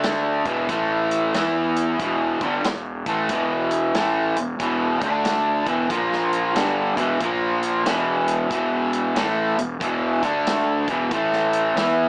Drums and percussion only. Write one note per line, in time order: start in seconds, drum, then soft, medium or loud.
0.03 snare loud
0.03 closed hi-hat medium
0.46 kick loud
0.46 closed hi-hat medium
0.69 kick loud
0.69 closed hi-hat medium
1.11 closed hi-hat medium
1.34 snare medium
1.34 closed hi-hat medium
1.76 closed hi-hat medium
2.00 kick loud
2.00 closed hi-hat medium
2.41 kick medium
2.41 closed hi-hat medium
2.64 snare loud
2.64 closed hi-hat medium
3.06 kick loud
3.06 closed hi-hat medium
3.29 kick loud
3.29 closed hi-hat medium
3.71 closed hi-hat medium
3.94 snare loud
3.94 closed hi-hat medium
4.36 closed hi-hat medium
4.60 kick loud
4.60 closed hi-hat medium
5.02 kick loud
5.02 closed hi-hat medium
5.25 snare medium
5.25 closed hi-hat medium
5.67 kick loud
5.67 closed hi-hat medium
5.90 kick loud
5.90 closed hi-hat medium
6.13 snare soft
6.33 closed hi-hat medium
6.56 snare medium
6.56 closed hi-hat medium
6.97 kick loud
6.97 closed hi-hat medium
7.20 kick loud
7.20 closed hi-hat medium
7.63 closed hi-hat medium
7.86 snare loud
7.86 closed hi-hat medium
8.28 closed hi-hat medium
8.51 kick loud
8.51 closed hi-hat medium
8.93 closed hi-hat medium
9.16 snare loud
9.16 closed hi-hat medium
9.59 closed hi-hat medium
9.81 kick loud
9.81 closed hi-hat medium
10.23 kick medium
10.23 closed hi-hat medium
10.47 snare loud
10.47 closed hi-hat medium
10.88 kick medium
10.88 closed hi-hat medium
11.11 kick loud
11.11 closed hi-hat medium
11.33 snare soft
11.53 closed hi-hat medium
11.77 snare loud
11.77 closed hi-hat medium